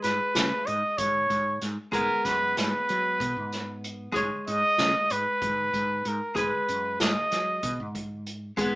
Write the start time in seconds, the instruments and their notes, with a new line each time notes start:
Already playing: hollow-body jazz guitar G#3 G#4 B4
0.03 fretless electric bass G#2, trumpet B4, snare, closed hi-hat
0.35 fretless electric bass C#3, snare, closed hi-hat
0.66 fretless electric bass G#2, trumpet D#5, closed hi-hat
0.98 fretless electric bass G#2, trumpet C#5, kick, closed hi-hat
1.30 fretless electric bass G#2, kick, closed hi-hat
1.61 fretless electric bass G#2, snare, closed hi-hat
1.92 fretless electric bass G#2, hollow-body jazz guitar G#3 B3 G#4, trumpet A#4, kick, closed hi-hat
2.25 fretless electric bass F#2, trumpet B4, kick, snare, closed hi-hat
2.57 fretless electric bass G#2, trumpet B4, snare, closed hi-hat
2.89 fretless electric bass F#3, closed hi-hat
3.20 fretless electric bass B2, kick, closed hi-hat
3.37 fretless electric bass G#2
3.52 snare, closed hi-hat
3.84 closed hi-hat
4.12 fretless electric bass G#2, hollow-body jazz guitar G#3 G#4 C#5, kick, closed hi-hat
4.47 fretless electric bass G#2, trumpet D#5, closed hi-hat
4.78 fretless electric bass C#3, snare, closed hi-hat
5.10 fretless electric bass G#2, trumpet B4, closed hi-hat
5.42 fretless electric bass G#2, kick, closed hi-hat
5.73 fretless electric bass G#2, kick, closed hi-hat
6.05 fretless electric bass G#2, trumpet A#4, closed hi-hat
6.35 fretless electric bass G#2, hollow-body jazz guitar G#3 G#4 B4, trumpet B4, kick, closed hi-hat
6.68 fretless electric bass F#2, closed hi-hat
7.00 fretless electric bass G#2, trumpet D#5, snare, closed hi-hat
7.32 fretless electric bass F#3, snare, closed hi-hat
7.63 fretless electric bass B2, kick, closed hi-hat
7.80 fretless electric bass G#2
7.95 kick, closed hi-hat
8.26 closed hi-hat
8.57 fretless electric bass G#2, hollow-body jazz guitar G#3 B3 G#4, kick, closed hi-hat